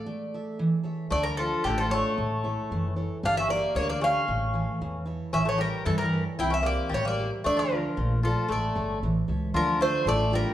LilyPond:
<<
  \new Staff \with { instrumentName = "Bouzouki" } { \time 2/4 \key a \phrygian \tempo 4 = 114 d''4. r8 | d''16 bes'16 a'8 g'16 a'16 cis''8~ | cis''4. r8 | f''16 e''16 d''8 cis''16 d''16 f''8~ |
f''4. r8 | e''16 cis''16 bes'8 a'16 bes'8 r16 | g''16 e''16 d''8 cis''16 d''8 r16 | d''16 bes'4~ bes'16 a'8 |
d''4 r4 | \key d \minor bes'8 c''8 d''8 bes'8 | }
  \new Staff \with { instrumentName = "Steel-string acoustic guitar" } { \time 2/4 \key a \phrygian a8 <a' e''>8 e8 <a' cis'' e''>8 | d8 <d' f' a'>8 a8 <d' f' a'>8 | a8 <e' a' cis''>8 e8 <e' a' cis''>8 | g8 <g' bes' d''>8 d8 <g' bes' d''>8 |
a8 <e a' cis''>8 e8 <e' a' cis''>8 | e8 <e' a' cis''>8 e8 <e' a' cis''>8 | c'8 <g' c'' e''>8 g8 <g' c'' e''>8 | d'8 <f' d'' f''>8 a8 <a' d'' f''>8 |
a8 <a' cis'' e''>8 e8 <a' cis'' e''>8 | \key d \minor d8 <d' e' f'>8 a8 <d' e' f'>8 | }
  \new Staff \with { instrumentName = "Bouzouki" } { \time 2/4 \key a \phrygian r2 | a16 g16 f8 d16 f16 a8~ | a4. r8 | d'16 cis'16 bes8 bes16 bes16 cis'8~ |
cis'4. r8 | cis'16 a16 g8 e16 g8 r16 | e'16 cis'16 bes8 g16 bes8 r16 | a16 f4~ f16 f8 |
a4 r4 | \key d \minor f8 a8 a8 g8 | }
  \new Staff \with { instrumentName = "Upright bass" } { \clef bass \time 2/4 \key a \phrygian r2 | d,4 a,,4 | a,,4 fis,,4 | g,,4 d,4 |
a,,4 e,4 | a,,4 g,4 | c,4 a,,4 | d,4 bes,,4 |
a,,8 g,,8 a,,8 cis,8 | \key d \minor d,4 a,,4 | }
>>